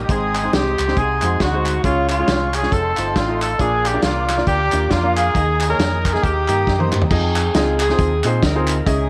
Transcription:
Already playing: D#5
0.03 G4
0.09 G#1 G#2 G#3 C4 D#4 G#4 C5 C6 D#6, kick, closed hi-hat
0.35 clap, closed hi-hat
0.43 G#3 C4 D#4 C5
0.53 C2 C4 D#4 G4, snare, closed hi-hat
0.79 C#2, clap, closed hi-hat
0.87 G#3 C4 D#4 C5, snare
0.97 C2 C3 D#4 G#4 F#5, kick, closed hi-hat
1.22 F2 G#3 D#4 F#4 C5, clap, closed hi-hat
1.40 D2 D#4 F#4, kick, snare, closed hi-hat
1.53 G#3 D#4 F#4 C5
1.66 clap, closed hi-hat
1.83 C#2 C#3 G#3 C#4 F4 C#5 F5 C#6, kick, closed hi-hat
2.09 G#3 C#4 F4, clap, closed hi-hat
2.19 G#3 C#4 F4 C#5
2.28 C2, snare, closed hi-hat
2.54 G#4, clap, closed hi-hat
2.62 G#3 C#4 F4 C#5, snare
2.72 F1 C4 D#4 A4 D#5 A5 C6, kick, closed hi-hat
2.97 G1 A3 D#4 F4 C5, clap, closed hi-hat
3.15 A1 F4, kick, snare, closed hi-hat
3.28 A3 D#4 F4 A4
3.42 A4, clap, closed hi-hat
3.59 A#1 A#2 A#3 D4 F4 G#4 D5 A#5 D6, kick, closed hi-hat
3.85 G4, clap, closed hi-hat
3.93 A#3 D4 F4 D5
4.02 C2 A#3 D4 F4, snare, closed hi-hat
4.29 snare, clap, closed hi-hat
4.37 A#3 D4 F4 D5, snare
4.47 D2 A#3 D4 G4, kick, closed hi-hat
4.72 D#2 A#3 D4 F4 D5, clap, closed hi-hat
4.91 F2 A#3 D4 F4, kick, snare, closed hi-hat
5.03 A#3 D4 F4 F5
5.16 G#4, clap, closed hi-hat
5.34 D#2 D#3 A#3 D#4 G#4 D#5 G#5 D#6, kick, closed hi-hat
5.60 clap, closed hi-hat
5.68 A#3 D#4 G#4 A#4 C#5
5.79 F2, snare, closed hi-hat
6.05 kick, snare, clap, closed hi-hat
6.12 A#3 D#4 G#4 D#5, snare
6.22 D#2 D#3 A#3 D#4 G4 D#5 G5 A#5 D#6, kick, closed hi-hat
6.48 G2 A#3 D#4 G4 D#5, clap, closed hi-hat
6.67 F#2, kick, snare
6.79 A#3 D#4 G4 C5, high tom
6.92 clap, mid tom
7.02 floor tom
7.10 F2 C4 D#4 F4 G#4 D#5, kick, crash
7.36 clap, closed hi-hat
7.54 C#2 C4 D#4 F4 G#4 D#5, snare, closed hi-hat
7.80 C4 D#4 G#4, clap, closed hi-hat
7.89 C4 D#4 F4 G#4 C5, snare
7.98 D#2, kick, closed hi-hat
8.23 A#2 C4 D#4 F4 G#4 C5 D#5, clap, closed hi-hat
8.42 D2 D#4 A#4, kick, snare, closed hi-hat
8.55 C4 D#4 F4 G#4 C5
8.67 clap, closed hi-hat
8.86 C#2 C#3 C#4 D#4 E4 G#4 D#5, kick, closed hi-hat

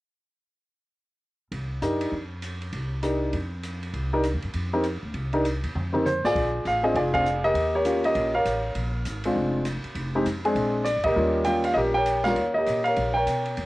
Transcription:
1.52 C2, ride
1.82 F#2 D4 D#4 G4 A#4, hi-hat pedal, ride
2.01 ride
2.12 F2
2.42 hi-hat pedal, ride
2.61 ride
2.72 C2, ride
3.02 D4 D#4 G4 A#4, hi-hat pedal, ride
3.33 F2, ride
3.63 hi-hat pedal, ride
3.82 ride
3.93 C2, ride
4.13 D4 D#4 G4 A#4
4.23 hi-hat pedal, ride
4.33 D#2
4.42 F#2, ride
4.53 F2, ride
4.73 C4 D#4 G4 A#4
4.84 hi-hat pedal, ride
5.03 D2
5.14 C2, ride
5.33 D4 D#4 G4 A#4, ride
5.45 hi-hat pedal, ride
5.63 D#2, ride
5.75 F2, mid tom
5.93 C4 D#4 G4 A#4, mid tom
6.06 C5, hi-hat pedal, mid tom
6.24 A1 F4 G#4 D5, snare
6.35 A#1, kick, ride
6.65 A1 F5, hi-hat pedal, ride
6.83 C4 D4 F4 G#4 D#5
6.94 F1 F4 G#4 D5, ride
7.14 C4 D4 F4 G#4 D5 F5, kick, ride
7.25 hi-hat pedal
7.44 G4 A#4 D#5
7.54 D#2, ride
7.75 G4 A#4 C#5
7.85 A#3 C#4 F4 G4, hi-hat pedal, ride
8.04 G4 A#4 D#5, ride
8.15 A#1, ride
8.35 A#4 C#5 F5
8.45 A1, hi-hat pedal, ride
8.75 A#1, ride
9.05 G#1, hi-hat pedal, ride
9.24 G#3 C4 D4 F4, ride
9.36 F1
9.65 hi-hat pedal, ride
9.84 muted upright bass stroke, ride
9.95 F1, ride
10.15 G#3 C4 D#4 G4
10.25 F2, hi-hat pedal, ride
10.45 G#3 C4 D4 G#4, ride
10.55 A#1, ride
10.84 D5, hi-hat pedal, ride
10.96 F2
11.03 A#2 G4 A#4 D#5, kick, ride
11.16 D#2 G3 A#3 C#4 F4
11.44 G3 A#3 C#4 F4 G5, hi-hat pedal, ride
11.64 F5, ride
11.74 A#1 G4 A#4 D#5
11.94 A#4 C#5 G5
12.06 hi-hat pedal, ride
12.24 G3 A#3 C#4 F4 A#4 C#5 F5, snare, ride
12.36 D#2, ride
12.54 G4 D#5
12.58 A#4
12.66 A#2, hi-hat pedal, ride
12.84 A#4 C#5 F5, ride
12.96 A#1, ride
13.14 A#4 C#5 G5
13.27 B2, hi-hat pedal, ride
13.46 ride
13.57 E2, ride

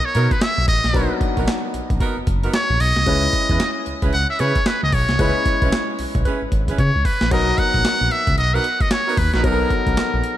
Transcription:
Already playing: F#3 B3 D#4 A#4
0.05 C#5
0.14 B2 B3 D#4 F#4 A#4, closed hi-hat
0.31 B4, kick, closed hi-hat
0.41 E5, snare, clap, closed hi-hat
0.58 B1
0.68 A1 D#5, kick, closed hi-hat
0.84 A#1, snare, closed hi-hat
0.93 B1 F#3 B3 D4 D#4 F#4 A#4 B4, kick, closed hi-hat
1.02 D#4
1.21 kick, closed hi-hat
1.36 A#1 B3 D#4 F#4 A#4, kick, closed hi-hat
1.47 snare, clap, closed hi-hat
1.74 A#1, closed hi-hat
1.90 A#1, kick, closed hi-hat
2.00 B3 D#4 F#4 A#4, kick, closed hi-hat
2.17 F#1
2.27 F#1, kick, closed hi-hat
2.43 B3 D#4 F#4 A#4, closed hi-hat
2.53 C#5, snare, clap, closed hi-hat
2.70 A#1
2.80 B1 D#5, open hi-hat
2.96 C2, snare, closed hi-hat
3.06 C#2 G#3 C#4 E4 G#4 B4, kick, closed hi-hat
3.33 kick, closed hi-hat
3.49 E2 C#4 E4 G#4 B4, kick, closed hi-hat
3.60 snare, clap, closed hi-hat
3.86 C#2, closed hi-hat
4.02 C#2 C#4 E4 G#4 B4, kick, closed hi-hat
4.13 C#2 F#5, closed hi-hat
4.30 E5
4.39 C#3 C#4 E4 G#4 B4 C#5, closed hi-hat
4.55 kick, closed hi-hat
4.66 B4, snare, clap, closed hi-hat
4.83 C#2 D#5
4.92 B1 C#5, kick, open hi-hat
5.09 C2, snare, closed hi-hat
5.19 C#2 G#3 C#4 E4 G#4 B4, kick, closed hi-hat
5.46 kick, closed hi-hat
5.62 B1 C#4 E4 G#4 B4, kick, closed hi-hat
5.72 snare, clap, closed hi-hat
5.99 B1, open hi-hat
6.15 B1, kick, closed hi-hat
6.25 C#4 E4 G#4 B4, kick, closed hi-hat
6.42 G#1
6.52 G#1, kick, closed hi-hat
6.68 C#4 E4 G#4 B4, kick, closed hi-hat
6.78 C#3 C#5, kick, closed hi-hat
6.95 C#2
7.05 B4, kick, open hi-hat
7.21 A#1, snare, closed hi-hat
7.31 B1 F#3 B3 D#4 F#4 A#4 D#5, kick, closed hi-hat, crash
7.58 F#5, kick, closed hi-hat
7.74 A#1, kick, closed hi-hat
7.85 snare, clap, closed hi-hat
8.01 A#1
8.11 E5, closed hi-hat
8.27 C#2, kick, closed hi-hat
8.38 B1 D#5, closed hi-hat
8.54 B3 D#4 F#4 A#4 F#5
8.64 closed hi-hat
8.80 D#5, kick, closed hi-hat
8.91 C#5, snare, clap, closed hi-hat
9.07 B3 D#4 F#4 A#4
9.17 D#2 B4, kick, open hi-hat
9.33 A#1 B3 D#4 F#4 A#4 B4, snare, closed hi-hat
9.43 B1 F#3 B3 D#4 F#4 A4 A#4, kick, closed hi-hat
9.52 A#4
9.70 kick, closed hi-hat
9.87 B1, kick, closed hi-hat
9.97 snare, clap, closed hi-hat
10.14 A#1
10.24 closed hi-hat

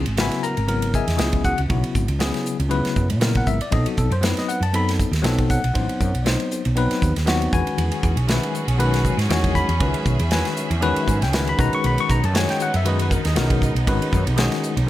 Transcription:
0.06 G#1, ride
0.17 C#3 F#3 B3 E4 F#4 B4 E5 G#5 B5, snare, ride
0.31 snare, ride
0.43 A#4 A#5, hi-hat pedal
0.57 G#1, ride
0.67 C#3 F#3 B3 E4 A#4, ride
0.82 ride
0.94 G#4 D#5 E5 G#5, kick, hi-hat pedal
1.07 E2, snare, ride
1.17 C#2 C#3 F#3 B3 E4 G#4, snare, ride
1.33 kick, ride
1.44 F#4 F#5, kick, hi-hat pedal
1.58 C#2, ride
1.68 B1 C#3 F#3 B3 E4 F#4, kick, ride
1.84 ride
1.95 G#1, kick, hi-hat pedal
2.08 C#2, ride
2.19 C#3 F#3 B3 E4 G#4, snare, ride
2.34 snare, ride
2.46 hi-hat pedal
2.60 C#2, ride
2.69 C#3 F#3 B3 E4 B4, ride
2.85 snare, ride
2.96 F#2, kick, hi-hat pedal
3.10 A#2, ride
3.20 C#3 F#3 B3 E4 A#4, snare, ride
3.35 F#5, kick, ride
3.46 G#1 E5, kick, hi-hat pedal
3.60 D5, muted fretless electric bass stroke, ride
3.71 B1 F#3 B3 C4 D#4 A4 D#5, kick, ride
3.86 F#4, ride
3.97 B1 A4, kick, hi-hat pedal
4.10 F#2 C5, ride
4.21 F#3 B3 C4 D#4 B4, snare, ride
4.37 D#5, snare, ride
4.49 F#5, hi-hat pedal
4.61 F#2 A5, ride
4.73 F#3 B3 C4 D#4 A4 B5, ride
4.89 snare, ride
5.00 kick, hi-hat pedal
5.12 D#2, snare, ride
5.22 B1 F#3 B3 C4 D#4 A4, snare, ride
5.38 kick, ride
5.50 F#5, kick, hi-hat pedal
5.64 B1, ride
5.74 A1 F#3 B3 C4 D#4 C5, kick, ride
5.89 ride
6.01 F#2, kick, hi-hat pedal
6.14 B1, ride
6.23 F#3 B3 C4 D#4 C5 D5, ride
6.27 D#5, snare
6.40 ride
6.51 hi-hat pedal
6.65 B1, ride
6.76 F#3 B3 C4 D#4 B4, ride
6.91 muted fretless electric bass stroke, snare, ride
7.02 D#2, kick, hi-hat pedal
7.16 D#2, snare, ride
7.26 F#3 B3 C4 D#4 F#4, snare, ride
7.42 ride
7.52 E2 D#3 G#3 C#4 F#4 B4 G#5, kick, hi-hat pedal
7.67 ride
7.78 E2 F#3 C#4 F#4 G#4, ride
7.92 ride
8.03 E2, kick, hi-hat pedal
8.16 B1, ride
8.27 D#3 G#3 C#4 F#4 B4 E5, snare, ride
8.43 ride
8.55 hi-hat pedal
8.68 B1, ride
8.78 D#3 G#3 C#4 F#4 B4, ride
8.94 snare, ride
9.05 kick, hi-hat pedal
9.17 G#2, snare, ride
9.29 E2 D#3 G#3 C#4 F#4 C#5, snare, ride
9.44 kick, ride
9.55 B5, kick, hi-hat pedal
9.69 E2, ride
9.80 C#2 D#3 G#3 C#4 F#4 B4 E5, kick, ride
9.94 ride
10.06 B1, kick, hi-hat pedal
10.19 E2, ride
10.31 D#3 G#3 C#4 F#4 B4 G#5, snare, ride
10.45 snare, ride
10.57 hi-hat pedal
10.70 E2, ride
10.81 D#3 G#3 C#4 F#4 B4, ride
10.96 muted fretless electric bass stroke, ride
11.08 G#2, kick, hi-hat pedal
11.21 C#2 G5, snare, ride
11.32 D#3 G#3 C#4 F#4 B4 G#5, snare, ride
11.47 B5, ride
11.57 B1 D#3 G#3 B3 C#4 D#4 F#4 B4 A#5, kick, hi-hat pedal
11.73 C#6, ride
11.84 B1 B5, ride
11.98 C#6, ride
12.09 B1 A#5, kick, hi-hat pedal
12.24 F#2 A5, ride
12.33 D#3 G#3 C#4 F#4 C#5 G#5, snare, ride
12.49 G5, snare, ride
12.60 F#5, hi-hat pedal
12.74 F#2 E5, ride
12.84 D#3 G#3 C#4 F#4 B4, ride
12.88 D#5
12.99 B4, ride
13.11 A#4, kick, hi-hat pedal
13.25 D#2 D#5, snare, ride
13.35 B1 D#3 G#3 C#4 F#4 A#4, snare, ride
13.50 kick, ride
13.62 kick, hi-hat pedal
13.75 B1, ride
13.87 G#1 D#3 G#3 C#4 F#4 B4, kick, ride
14.02 ride
14.13 F#2, kick, hi-hat pedal
14.26 B1, ride
14.37 D#3 G#3 C#4 F#4 G#4, snare, ride
14.52 snare, ride
14.63 hi-hat pedal
14.77 B1, ride

